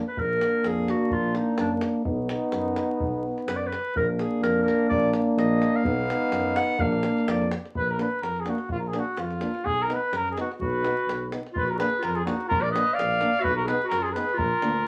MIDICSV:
0, 0, Header, 1, 7, 480
1, 0, Start_track
1, 0, Tempo, 475059
1, 167, Time_signature, 2, 2, 24, 8
1, 11688, Tempo, 470219
1, 15064, End_track
2, 0, Start_track
2, 0, Title_t, "Cornet"
2, 0, Program_c, 0, 56
2, 7844, Note_on_c, 0, 71, 86
2, 7988, Note_on_c, 0, 70, 68
2, 8003, Note_off_c, 0, 71, 0
2, 8082, Note_off_c, 0, 70, 0
2, 8088, Note_on_c, 0, 71, 74
2, 8308, Note_on_c, 0, 70, 82
2, 8323, Note_off_c, 0, 71, 0
2, 8489, Note_on_c, 0, 68, 62
2, 8504, Note_off_c, 0, 70, 0
2, 8581, Note_on_c, 0, 66, 59
2, 8597, Note_off_c, 0, 68, 0
2, 8793, Note_off_c, 0, 66, 0
2, 8799, Note_on_c, 0, 65, 84
2, 8884, Note_off_c, 0, 65, 0
2, 8890, Note_on_c, 0, 70, 48
2, 8968, Note_on_c, 0, 68, 80
2, 8983, Note_off_c, 0, 70, 0
2, 9083, Note_on_c, 0, 66, 70
2, 9098, Note_off_c, 0, 68, 0
2, 9290, Note_on_c, 0, 65, 81
2, 9305, Note_off_c, 0, 66, 0
2, 9750, Note_on_c, 0, 68, 93
2, 9765, Note_off_c, 0, 65, 0
2, 9922, Note_on_c, 0, 70, 79
2, 9937, Note_off_c, 0, 68, 0
2, 10045, Note_on_c, 0, 71, 82
2, 10060, Note_off_c, 0, 70, 0
2, 10266, Note_on_c, 0, 70, 93
2, 10282, Note_off_c, 0, 71, 0
2, 10388, Note_off_c, 0, 70, 0
2, 10417, Note_on_c, 0, 68, 63
2, 10498, Note_off_c, 0, 68, 0
2, 10516, Note_on_c, 0, 66, 59
2, 10617, Note_off_c, 0, 66, 0
2, 10742, Note_on_c, 0, 71, 82
2, 11412, Note_off_c, 0, 71, 0
2, 11692, Note_on_c, 0, 71, 82
2, 11829, Note_on_c, 0, 70, 70
2, 11844, Note_off_c, 0, 71, 0
2, 11905, Note_off_c, 0, 70, 0
2, 11912, Note_on_c, 0, 71, 80
2, 12173, Note_on_c, 0, 70, 78
2, 12188, Note_off_c, 0, 71, 0
2, 12289, Note_on_c, 0, 68, 69
2, 12304, Note_off_c, 0, 70, 0
2, 12390, Note_off_c, 0, 68, 0
2, 12396, Note_on_c, 0, 66, 68
2, 12619, Note_off_c, 0, 66, 0
2, 12625, Note_on_c, 0, 70, 98
2, 12756, Note_on_c, 0, 74, 92
2, 12771, Note_off_c, 0, 70, 0
2, 12849, Note_off_c, 0, 74, 0
2, 12855, Note_on_c, 0, 75, 89
2, 13082, Note_on_c, 0, 77, 106
2, 13097, Note_off_c, 0, 75, 0
2, 13588, Note_on_c, 0, 71, 102
2, 13603, Note_off_c, 0, 77, 0
2, 13720, Note_off_c, 0, 71, 0
2, 13726, Note_on_c, 0, 70, 76
2, 13833, Note_on_c, 0, 71, 89
2, 13849, Note_off_c, 0, 70, 0
2, 14044, Note_off_c, 0, 71, 0
2, 14050, Note_on_c, 0, 70, 94
2, 14198, Note_on_c, 0, 68, 62
2, 14213, Note_off_c, 0, 70, 0
2, 14299, Note_on_c, 0, 71, 80
2, 14314, Note_off_c, 0, 68, 0
2, 14552, Note_on_c, 0, 70, 98
2, 14567, Note_off_c, 0, 71, 0
2, 15064, Note_off_c, 0, 70, 0
2, 15064, End_track
3, 0, Start_track
3, 0, Title_t, "Clarinet"
3, 0, Program_c, 1, 71
3, 77, Note_on_c, 1, 71, 82
3, 200, Note_on_c, 1, 70, 100
3, 215, Note_off_c, 1, 71, 0
3, 680, Note_on_c, 1, 68, 89
3, 695, Note_off_c, 1, 70, 0
3, 913, Note_on_c, 1, 66, 78
3, 928, Note_off_c, 1, 68, 0
3, 1141, Note_on_c, 1, 65, 83
3, 1156, Note_off_c, 1, 66, 0
3, 1371, Note_off_c, 1, 65, 0
3, 1383, Note_on_c, 1, 63, 75
3, 1595, Note_off_c, 1, 63, 0
3, 1622, Note_on_c, 1, 62, 74
3, 1725, Note_off_c, 1, 62, 0
3, 3514, Note_on_c, 1, 71, 78
3, 3598, Note_on_c, 1, 74, 70
3, 3613, Note_off_c, 1, 71, 0
3, 3702, Note_on_c, 1, 71, 85
3, 3718, Note_off_c, 1, 74, 0
3, 4002, Note_off_c, 1, 71, 0
3, 4008, Note_on_c, 1, 70, 86
3, 4113, Note_off_c, 1, 70, 0
3, 4247, Note_on_c, 1, 68, 80
3, 4464, Note_off_c, 1, 68, 0
3, 4478, Note_on_c, 1, 70, 87
3, 4677, Note_off_c, 1, 70, 0
3, 4683, Note_on_c, 1, 70, 85
3, 4920, Note_off_c, 1, 70, 0
3, 4942, Note_on_c, 1, 74, 100
3, 5170, Note_off_c, 1, 74, 0
3, 5433, Note_on_c, 1, 75, 83
3, 5821, Note_on_c, 1, 77, 100
3, 5836, Note_off_c, 1, 75, 0
3, 6640, Note_on_c, 1, 78, 104
3, 6655, Note_off_c, 1, 77, 0
3, 6875, Note_on_c, 1, 77, 95
3, 6890, Note_off_c, 1, 78, 0
3, 7366, Note_on_c, 1, 74, 82
3, 7381, Note_off_c, 1, 77, 0
3, 7601, Note_off_c, 1, 74, 0
3, 10704, Note_on_c, 1, 66, 83
3, 11393, Note_off_c, 1, 66, 0
3, 11648, Note_on_c, 1, 65, 78
3, 11779, Note_on_c, 1, 66, 66
3, 11794, Note_off_c, 1, 65, 0
3, 11890, Note_off_c, 1, 66, 0
3, 11896, Note_on_c, 1, 68, 66
3, 12118, Note_on_c, 1, 65, 71
3, 12133, Note_off_c, 1, 68, 0
3, 12251, Note_off_c, 1, 65, 0
3, 12251, Note_on_c, 1, 65, 66
3, 12372, Note_off_c, 1, 65, 0
3, 12378, Note_on_c, 1, 63, 62
3, 12612, Note_off_c, 1, 63, 0
3, 12618, Note_on_c, 1, 65, 76
3, 12754, Note_on_c, 1, 70, 66
3, 12770, Note_off_c, 1, 65, 0
3, 12849, Note_off_c, 1, 70, 0
3, 12855, Note_on_c, 1, 71, 81
3, 13090, Note_on_c, 1, 74, 95
3, 13105, Note_off_c, 1, 71, 0
3, 13559, Note_on_c, 1, 66, 89
3, 13575, Note_off_c, 1, 74, 0
3, 13699, Note_off_c, 1, 66, 0
3, 13705, Note_on_c, 1, 66, 72
3, 13805, Note_on_c, 1, 68, 83
3, 13820, Note_off_c, 1, 66, 0
3, 14004, Note_off_c, 1, 68, 0
3, 14010, Note_on_c, 1, 66, 74
3, 14156, Note_on_c, 1, 65, 69
3, 14171, Note_off_c, 1, 66, 0
3, 14277, Note_on_c, 1, 68, 75
3, 14293, Note_off_c, 1, 65, 0
3, 14521, Note_on_c, 1, 65, 86
3, 14536, Note_off_c, 1, 68, 0
3, 15064, Note_off_c, 1, 65, 0
3, 15064, End_track
4, 0, Start_track
4, 0, Title_t, "Trombone"
4, 0, Program_c, 2, 57
4, 186, Note_on_c, 2, 62, 52
4, 2048, Note_off_c, 2, 62, 0
4, 2068, Note_on_c, 2, 63, 80
4, 3762, Note_off_c, 2, 63, 0
4, 4009, Note_on_c, 2, 62, 67
4, 5902, Note_on_c, 2, 63, 80
4, 5917, Note_off_c, 2, 62, 0
4, 6868, Note_on_c, 2, 62, 68
4, 6883, Note_off_c, 2, 63, 0
4, 7646, Note_off_c, 2, 62, 0
4, 8057, Note_on_c, 2, 62, 49
4, 8157, Note_off_c, 2, 62, 0
4, 8539, Note_on_c, 2, 62, 45
4, 8639, Note_off_c, 2, 62, 0
4, 9031, Note_on_c, 2, 62, 52
4, 9129, Note_off_c, 2, 62, 0
4, 9506, Note_on_c, 2, 62, 47
4, 9606, Note_off_c, 2, 62, 0
4, 9986, Note_on_c, 2, 63, 55
4, 10086, Note_off_c, 2, 63, 0
4, 10475, Note_on_c, 2, 63, 51
4, 10573, Note_off_c, 2, 63, 0
4, 10946, Note_on_c, 2, 63, 49
4, 11045, Note_off_c, 2, 63, 0
4, 11431, Note_on_c, 2, 63, 43
4, 11529, Note_off_c, 2, 63, 0
4, 11911, Note_on_c, 2, 62, 47
4, 12010, Note_off_c, 2, 62, 0
4, 12381, Note_on_c, 2, 62, 53
4, 12482, Note_off_c, 2, 62, 0
4, 12878, Note_on_c, 2, 62, 54
4, 12976, Note_off_c, 2, 62, 0
4, 13359, Note_on_c, 2, 62, 59
4, 13457, Note_off_c, 2, 62, 0
4, 13836, Note_on_c, 2, 63, 64
4, 13934, Note_off_c, 2, 63, 0
4, 14320, Note_on_c, 2, 63, 53
4, 14417, Note_off_c, 2, 63, 0
4, 14800, Note_on_c, 2, 62, 61
4, 14896, Note_off_c, 2, 62, 0
4, 15064, End_track
5, 0, Start_track
5, 0, Title_t, "Euphonium"
5, 0, Program_c, 3, 58
5, 173, Note_on_c, 3, 58, 59
5, 2042, Note_off_c, 3, 58, 0
5, 2075, Note_on_c, 3, 59, 71
5, 3766, Note_off_c, 3, 59, 0
5, 3997, Note_on_c, 3, 58, 66
5, 5908, Note_on_c, 3, 59, 80
5, 5923, Note_off_c, 3, 58, 0
5, 6852, Note_on_c, 3, 58, 75
5, 6867, Note_off_c, 3, 59, 0
5, 7638, Note_off_c, 3, 58, 0
5, 8061, Note_on_c, 3, 58, 53
5, 8161, Note_off_c, 3, 58, 0
5, 8561, Note_on_c, 3, 58, 54
5, 8657, Note_off_c, 3, 58, 0
5, 9018, Note_on_c, 3, 58, 48
5, 9119, Note_off_c, 3, 58, 0
5, 9504, Note_on_c, 3, 58, 51
5, 9604, Note_off_c, 3, 58, 0
5, 9998, Note_on_c, 3, 59, 59
5, 10095, Note_off_c, 3, 59, 0
5, 10498, Note_on_c, 3, 59, 58
5, 10591, Note_off_c, 3, 59, 0
5, 10961, Note_on_c, 3, 59, 55
5, 11058, Note_off_c, 3, 59, 0
5, 11420, Note_on_c, 3, 59, 45
5, 11520, Note_off_c, 3, 59, 0
5, 11921, Note_on_c, 3, 58, 51
5, 12018, Note_off_c, 3, 58, 0
5, 12388, Note_on_c, 3, 58, 51
5, 12488, Note_off_c, 3, 58, 0
5, 12883, Note_on_c, 3, 58, 55
5, 12980, Note_off_c, 3, 58, 0
5, 13372, Note_on_c, 3, 58, 67
5, 13468, Note_off_c, 3, 58, 0
5, 13856, Note_on_c, 3, 59, 63
5, 13950, Note_off_c, 3, 59, 0
5, 14333, Note_on_c, 3, 59, 60
5, 14427, Note_off_c, 3, 59, 0
5, 14798, Note_on_c, 3, 58, 56
5, 14895, Note_off_c, 3, 58, 0
5, 15064, End_track
6, 0, Start_track
6, 0, Title_t, "Tuba"
6, 0, Program_c, 4, 58
6, 174, Note_on_c, 4, 34, 79
6, 435, Note_off_c, 4, 34, 0
6, 651, Note_on_c, 4, 41, 76
6, 912, Note_off_c, 4, 41, 0
6, 1121, Note_on_c, 4, 34, 80
6, 1384, Note_off_c, 4, 34, 0
6, 1603, Note_on_c, 4, 42, 82
6, 1865, Note_off_c, 4, 42, 0
6, 2080, Note_on_c, 4, 35, 93
6, 2343, Note_off_c, 4, 35, 0
6, 2556, Note_on_c, 4, 42, 78
6, 2820, Note_off_c, 4, 42, 0
6, 3034, Note_on_c, 4, 35, 80
6, 3298, Note_off_c, 4, 35, 0
6, 3512, Note_on_c, 4, 42, 68
6, 3776, Note_off_c, 4, 42, 0
6, 3998, Note_on_c, 4, 34, 90
6, 4260, Note_off_c, 4, 34, 0
6, 4460, Note_on_c, 4, 41, 81
6, 4727, Note_off_c, 4, 41, 0
6, 4951, Note_on_c, 4, 34, 85
6, 5215, Note_off_c, 4, 34, 0
6, 5426, Note_on_c, 4, 34, 92
6, 5692, Note_off_c, 4, 34, 0
6, 5894, Note_on_c, 4, 35, 104
6, 6163, Note_off_c, 4, 35, 0
6, 6385, Note_on_c, 4, 42, 88
6, 6651, Note_off_c, 4, 42, 0
6, 6854, Note_on_c, 4, 34, 93
6, 7124, Note_off_c, 4, 34, 0
6, 7350, Note_on_c, 4, 41, 85
6, 7615, Note_off_c, 4, 41, 0
6, 7832, Note_on_c, 4, 34, 81
6, 8098, Note_off_c, 4, 34, 0
6, 8309, Note_on_c, 4, 41, 59
6, 8576, Note_off_c, 4, 41, 0
6, 8790, Note_on_c, 4, 34, 71
6, 9057, Note_off_c, 4, 34, 0
6, 9267, Note_on_c, 4, 41, 66
6, 9536, Note_off_c, 4, 41, 0
6, 9742, Note_on_c, 4, 35, 78
6, 10012, Note_off_c, 4, 35, 0
6, 10228, Note_on_c, 4, 42, 75
6, 10497, Note_off_c, 4, 42, 0
6, 10714, Note_on_c, 4, 35, 85
6, 10981, Note_off_c, 4, 35, 0
6, 11187, Note_on_c, 4, 35, 69
6, 11455, Note_off_c, 4, 35, 0
6, 11673, Note_on_c, 4, 34, 72
6, 11941, Note_off_c, 4, 34, 0
6, 12170, Note_on_c, 4, 41, 79
6, 12434, Note_off_c, 4, 41, 0
6, 12662, Note_on_c, 4, 34, 86
6, 12923, Note_off_c, 4, 34, 0
6, 13134, Note_on_c, 4, 34, 77
6, 13397, Note_off_c, 4, 34, 0
6, 13608, Note_on_c, 4, 35, 94
6, 13872, Note_off_c, 4, 35, 0
6, 14082, Note_on_c, 4, 42, 74
6, 14346, Note_off_c, 4, 42, 0
6, 14565, Note_on_c, 4, 34, 89
6, 14697, Note_off_c, 4, 34, 0
6, 14800, Note_on_c, 4, 38, 75
6, 15017, Note_off_c, 4, 38, 0
6, 15064, End_track
7, 0, Start_track
7, 0, Title_t, "Davul"
7, 173, Note_on_c, 9, 43, 75
7, 274, Note_off_c, 9, 43, 0
7, 417, Note_on_c, 9, 37, 66
7, 519, Note_off_c, 9, 37, 0
7, 650, Note_on_c, 9, 37, 65
7, 751, Note_off_c, 9, 37, 0
7, 893, Note_on_c, 9, 37, 56
7, 994, Note_off_c, 9, 37, 0
7, 1119, Note_on_c, 9, 43, 84
7, 1220, Note_off_c, 9, 43, 0
7, 1362, Note_on_c, 9, 37, 53
7, 1463, Note_off_c, 9, 37, 0
7, 1593, Note_on_c, 9, 37, 69
7, 1694, Note_off_c, 9, 37, 0
7, 1832, Note_on_c, 9, 37, 67
7, 1933, Note_off_c, 9, 37, 0
7, 2074, Note_on_c, 9, 43, 81
7, 2175, Note_off_c, 9, 43, 0
7, 2316, Note_on_c, 9, 37, 69
7, 2417, Note_off_c, 9, 37, 0
7, 2548, Note_on_c, 9, 37, 67
7, 2649, Note_off_c, 9, 37, 0
7, 2793, Note_on_c, 9, 37, 65
7, 2894, Note_off_c, 9, 37, 0
7, 3035, Note_on_c, 9, 43, 87
7, 3136, Note_off_c, 9, 43, 0
7, 3413, Note_on_c, 9, 37, 25
7, 3514, Note_off_c, 9, 37, 0
7, 3516, Note_on_c, 9, 37, 72
7, 3617, Note_off_c, 9, 37, 0
7, 3763, Note_on_c, 9, 37, 54
7, 3864, Note_off_c, 9, 37, 0
7, 4001, Note_on_c, 9, 43, 81
7, 4102, Note_off_c, 9, 43, 0
7, 4237, Note_on_c, 9, 37, 57
7, 4338, Note_off_c, 9, 37, 0
7, 4483, Note_on_c, 9, 37, 64
7, 4584, Note_off_c, 9, 37, 0
7, 4731, Note_on_c, 9, 37, 57
7, 4832, Note_off_c, 9, 37, 0
7, 4960, Note_on_c, 9, 43, 81
7, 5062, Note_off_c, 9, 43, 0
7, 5188, Note_on_c, 9, 37, 59
7, 5289, Note_off_c, 9, 37, 0
7, 5441, Note_on_c, 9, 37, 59
7, 5542, Note_off_c, 9, 37, 0
7, 5675, Note_on_c, 9, 37, 55
7, 5776, Note_off_c, 9, 37, 0
7, 5911, Note_on_c, 9, 43, 91
7, 6012, Note_off_c, 9, 43, 0
7, 6165, Note_on_c, 9, 37, 64
7, 6266, Note_off_c, 9, 37, 0
7, 6387, Note_on_c, 9, 37, 70
7, 6488, Note_off_c, 9, 37, 0
7, 6629, Note_on_c, 9, 37, 76
7, 6730, Note_off_c, 9, 37, 0
7, 6861, Note_on_c, 9, 43, 98
7, 6962, Note_off_c, 9, 43, 0
7, 6994, Note_on_c, 9, 37, 25
7, 7095, Note_off_c, 9, 37, 0
7, 7103, Note_on_c, 9, 37, 70
7, 7204, Note_off_c, 9, 37, 0
7, 7258, Note_on_c, 9, 37, 30
7, 7356, Note_off_c, 9, 37, 0
7, 7356, Note_on_c, 9, 37, 79
7, 7457, Note_off_c, 9, 37, 0
7, 7493, Note_on_c, 9, 37, 27
7, 7592, Note_off_c, 9, 37, 0
7, 7592, Note_on_c, 9, 37, 66
7, 7693, Note_off_c, 9, 37, 0
7, 7734, Note_on_c, 9, 37, 30
7, 7833, Note_on_c, 9, 43, 70
7, 7835, Note_off_c, 9, 37, 0
7, 7934, Note_off_c, 9, 43, 0
7, 8077, Note_on_c, 9, 37, 52
7, 8178, Note_off_c, 9, 37, 0
7, 8320, Note_on_c, 9, 37, 54
7, 8421, Note_off_c, 9, 37, 0
7, 8451, Note_on_c, 9, 37, 20
7, 8546, Note_off_c, 9, 37, 0
7, 8546, Note_on_c, 9, 37, 50
7, 8647, Note_off_c, 9, 37, 0
7, 8672, Note_on_c, 9, 37, 24
7, 8773, Note_off_c, 9, 37, 0
7, 8781, Note_on_c, 9, 43, 74
7, 8882, Note_off_c, 9, 43, 0
7, 9027, Note_on_c, 9, 37, 56
7, 9128, Note_off_c, 9, 37, 0
7, 9269, Note_on_c, 9, 37, 59
7, 9370, Note_off_c, 9, 37, 0
7, 9401, Note_on_c, 9, 37, 25
7, 9502, Note_off_c, 9, 37, 0
7, 9507, Note_on_c, 9, 37, 55
7, 9608, Note_off_c, 9, 37, 0
7, 9646, Note_on_c, 9, 37, 25
7, 9747, Note_off_c, 9, 37, 0
7, 9765, Note_on_c, 9, 43, 74
7, 9866, Note_off_c, 9, 43, 0
7, 10004, Note_on_c, 9, 37, 58
7, 10105, Note_off_c, 9, 37, 0
7, 10236, Note_on_c, 9, 37, 68
7, 10337, Note_off_c, 9, 37, 0
7, 10384, Note_on_c, 9, 37, 23
7, 10484, Note_off_c, 9, 37, 0
7, 10484, Note_on_c, 9, 37, 57
7, 10585, Note_off_c, 9, 37, 0
7, 10624, Note_on_c, 9, 37, 24
7, 10724, Note_on_c, 9, 43, 76
7, 10725, Note_off_c, 9, 37, 0
7, 10825, Note_off_c, 9, 43, 0
7, 10957, Note_on_c, 9, 37, 56
7, 11058, Note_off_c, 9, 37, 0
7, 11103, Note_on_c, 9, 37, 23
7, 11204, Note_off_c, 9, 37, 0
7, 11208, Note_on_c, 9, 37, 68
7, 11309, Note_off_c, 9, 37, 0
7, 11440, Note_on_c, 9, 37, 64
7, 11542, Note_off_c, 9, 37, 0
7, 11585, Note_on_c, 9, 37, 26
7, 11678, Note_on_c, 9, 43, 82
7, 11686, Note_off_c, 9, 37, 0
7, 11780, Note_off_c, 9, 43, 0
7, 11924, Note_on_c, 9, 37, 71
7, 12026, Note_off_c, 9, 37, 0
7, 12157, Note_on_c, 9, 37, 66
7, 12259, Note_off_c, 9, 37, 0
7, 12299, Note_on_c, 9, 37, 26
7, 12401, Note_off_c, 9, 37, 0
7, 12407, Note_on_c, 9, 37, 66
7, 12509, Note_off_c, 9, 37, 0
7, 12539, Note_on_c, 9, 37, 26
7, 12641, Note_off_c, 9, 37, 0
7, 12652, Note_on_c, 9, 43, 100
7, 12754, Note_off_c, 9, 43, 0
7, 12900, Note_on_c, 9, 37, 70
7, 13002, Note_off_c, 9, 37, 0
7, 13142, Note_on_c, 9, 37, 68
7, 13244, Note_off_c, 9, 37, 0
7, 13261, Note_on_c, 9, 37, 27
7, 13363, Note_off_c, 9, 37, 0
7, 13363, Note_on_c, 9, 37, 58
7, 13465, Note_off_c, 9, 37, 0
7, 13509, Note_on_c, 9, 37, 25
7, 13603, Note_on_c, 9, 43, 78
7, 13611, Note_off_c, 9, 37, 0
7, 13705, Note_off_c, 9, 43, 0
7, 13846, Note_on_c, 9, 37, 63
7, 13948, Note_off_c, 9, 37, 0
7, 14085, Note_on_c, 9, 37, 66
7, 14188, Note_off_c, 9, 37, 0
7, 14231, Note_on_c, 9, 37, 25
7, 14333, Note_off_c, 9, 37, 0
7, 14335, Note_on_c, 9, 37, 60
7, 14437, Note_off_c, 9, 37, 0
7, 14467, Note_on_c, 9, 37, 26
7, 14565, Note_on_c, 9, 43, 91
7, 14569, Note_off_c, 9, 37, 0
7, 14667, Note_off_c, 9, 43, 0
7, 14806, Note_on_c, 9, 37, 61
7, 14908, Note_off_c, 9, 37, 0
7, 15064, End_track
0, 0, End_of_file